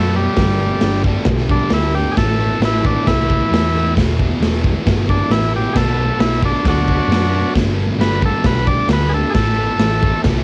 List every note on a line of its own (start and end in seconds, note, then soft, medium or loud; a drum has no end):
0.00 0.26 F#2 loud
0.00 0.14 B2 medium
0.00 0.15 F#3 medium
0.00 0.15 A3 medium
0.00 0.16 B3 medium
0.15 0.36 B2 medium
0.15 0.37 F#3 medium
0.15 1.03 G3 loud
0.15 0.37 B3 medium
0.36 0.71 G1 loud
0.36 0.58 G2 loud
0.36 0.59 D3 loud
0.36 0.60 G3 loud
0.36 kick loud
0.36 snare loud
0.36 open hi-hat medium
0.59 0.81 G2 medium
0.59 0.81 D3 medium
0.59 0.82 G3 medium
0.81 1.15 G1 medium
0.81 1.03 G2 medium
0.81 1.05 D3 loud
0.81 1.06 G3 loud
0.81 snare loud
0.81 open hi-hat medium
1.04 1.28 G2 medium
1.04 1.28 D3 medium
1.04 1.29 G3 medium
1.04 kick medium
1.25 1.60 B1 loud
1.25 kick loud
1.25 snare loud
1.25 open hi-hat medium
1.29 1.49 G2 loud
1.29 1.49 D3 loud
1.29 1.51 G3 loud
1.49 1.73 G2 medium
1.49 1.73 D3 loud
1.49 1.75 G3 loud
1.49 1.72 D4 loud
1.49 kick medium
1.70 2.05 D2 loud
1.70 1.95 G2 medium
1.70 1.95 E4 medium
1.70 snare loud
1.70 open hi-hat medium
1.75 1.95 D3 medium
1.75 1.96 G3 medium
1.95 2.16 G2 medium
1.95 2.16 D3 loud
1.95 2.17 G3 loud
1.95 2.16 G4 medium
2.12 2.15 G#4 medium
2.17 2.51 A1 loud
2.17 2.37 A2 loud
2.17 2.39 E3 loud
2.17 2.39 A3 loud
2.17 2.61 A4 loud
2.17 kick loud
2.17 snare loud
2.17 open hi-hat medium
2.38 2.61 A2 medium
2.38 2.62 E3 medium
2.38 2.63 A3 loud
2.60 2.95 A1 medium
2.60 2.80 A2 medium
2.60 2.82 E3 loud
2.60 2.82 A3 loud
2.60 snare loud
2.60 open hi-hat medium
2.65 2.85 E4 loud
2.81 3.03 A2 medium
2.81 3.04 E3 medium
2.81 3.04 A3 loud
2.81 kick medium
2.86 3.07 D4 medium
3.05 3.40 C2 loud
3.05 3.25 A2 loud
3.05 3.25 E3 loud
3.05 3.26 A3 loud
3.05 3.94 E4 loud
3.05 kick loud
3.05 snare loud
3.05 open hi-hat medium
3.26 3.49 A2 medium
3.26 3.51 E3 medium
3.26 3.51 A3 loud
3.30 kick medium
3.50 3.98 E2 loud
3.50 3.72 A2 medium
3.50 3.74 E3 loud
3.50 3.74 A3 loud
3.50 snare loud
3.50 open hi-hat medium
3.73 3.95 A2 medium
3.73 3.95 E3 medium
3.73 3.96 A3 medium
3.95 4.31 E1 loud
3.95 4.16 E2 loud
3.95 4.18 B2 loud
3.95 4.18 E3 loud
3.95 kick loud
3.95 snare loud
3.95 open hi-hat medium
4.17 4.39 E2 medium
4.17 4.40 B2 medium
4.17 4.41 E3 loud
4.17 kick medium
4.40 4.74 E1 medium
4.40 4.62 E2 medium
4.40 4.64 B2 medium
4.40 4.65 E3 medium
4.40 snare loud
4.40 open hi-hat medium
4.63 4.84 E2 medium
4.63 4.85 B2 medium
4.63 4.86 E3 loud
4.63 kick loud
4.86 5.20 G1 loud
4.86 5.07 E2 loud
4.86 5.08 B2 loud
4.86 5.09 E3 loud
4.86 kick loud
4.86 snare loud
4.86 open hi-hat medium
5.08 5.30 E2 medium
5.08 5.31 B2 medium
5.08 5.32 E3 loud
5.08 5.31 D4 loud
5.08 kick medium
5.30 5.64 A1 medium
5.30 5.53 E2 medium
5.30 5.55 B2 medium
5.30 5.54 E3 medium
5.30 5.53 E4 loud
5.30 snare loud
5.30 open hi-hat medium
5.54 5.75 E2 medium
5.54 5.73 B2 loud
5.54 5.74 E3 medium
5.54 5.77 G4 medium
5.73 6.09 B1 loud
5.73 5.97 B2 loud
5.73 5.97 F#3 loud
5.73 5.99 B3 loud
5.73 5.76 G#4 medium
5.73 6.20 A4 loud
5.73 kick loud
5.73 snare loud
5.73 crash loud
5.98 6.19 B2 medium
5.98 6.20 F#3 medium
5.98 6.22 B3 loud
6.19 6.54 B1 medium
6.19 6.42 B2 medium
6.19 6.43 F#3 medium
6.19 6.44 B3 loud
6.19 6.42 E4 loud
6.19 snare loud
6.19 open hi-hat medium
6.43 6.64 B2 medium
6.43 6.66 F#3 loud
6.43 6.66 B3 loud
6.43 6.66 D4 loud
6.43 kick loud
6.64 6.99 D2 loud
6.64 6.87 B2 loud
6.64 6.88 F#3 loud
6.64 6.90 B3 loud
6.64 7.54 F#4 loud
6.64 kick loud
6.64 snare loud
6.64 open hi-hat medium
6.70 7.53 D4 medium
6.88 7.10 B2 medium
6.88 7.12 F#3 medium
6.88 7.12 B3 loud
6.88 kick medium
7.08 7.43 F#2 medium
7.08 7.32 B2 medium
7.12 7.34 F#3 medium
7.12 7.35 B3 loud
7.12 snare loud
7.12 open hi-hat medium
7.33 7.54 B2 medium
7.33 7.55 F#3 medium
7.33 7.56 B3 medium
7.54 7.89 G1 loud
7.54 7.75 G2 loud
7.54 7.76 D3 loud
7.54 7.78 G3 loud
7.54 kick loud
7.54 snare loud
7.54 open hi-hat medium
7.77 7.98 G2 medium
7.77 7.98 D3 medium
7.77 7.99 G3 loud
7.99 8.33 G1 medium
7.99 8.21 G2 medium
7.99 8.23 D3 medium
7.99 8.24 G3 medium
7.99 8.22 B4 loud
7.99 snare loud
7.99 open hi-hat medium
8.22 8.45 G2 medium
8.22 8.45 D3 loud
8.22 8.46 G3 loud
8.22 8.46 A4 loud
8.22 kick medium
8.44 8.79 B1 loud
8.44 8.67 G2 loud
8.44 8.68 D3 loud
8.44 8.69 G3 loud
8.44 8.67 B4 medium
8.44 kick loud
8.44 snare loud
8.44 open hi-hat medium
8.67 8.88 G2 loud
8.67 8.90 D3 medium
8.67 8.91 G3 loud
8.67 8.89 D5 loud
8.67 kick medium
8.88 9.23 D2 loud
8.88 9.13 G2 medium
8.88 9.13 D3 medium
8.88 9.14 G3 medium
8.88 snare loud
8.88 open hi-hat medium
8.93 9.13 B4 loud
9.09 9.12 G#4 medium
9.14 9.34 G2 medium
9.14 9.34 D3 medium
9.14 9.35 G3 medium
9.14 9.33 A4 loud
9.30 9.56 A2 medium
9.30 9.33 G#4 medium
9.34 9.68 A1 loud
9.34 9.58 E3 loud
9.34 9.58 A3 loud
9.34 10.22 A4 loud
9.34 kick loud
9.34 snare loud
9.34 open hi-hat medium
9.57 9.77 A2 medium
9.57 9.79 E3 loud
9.57 9.79 A3 loud
9.78 10.13 A1 medium
9.78 10.00 A2 medium
9.78 10.02 E3 loud
9.78 10.02 A3 loud
9.78 snare loud
9.78 open hi-hat medium
10.01 10.22 A2 medium
10.01 10.23 E3 medium
10.01 10.24 A3 loud
10.01 kick loud
10.23 10.44 C2 loud
10.23 10.44 A2 loud
10.23 10.44 E3 loud
10.23 10.44 A3 loud
10.23 kick loud
10.23 snare loud
10.23 open hi-hat medium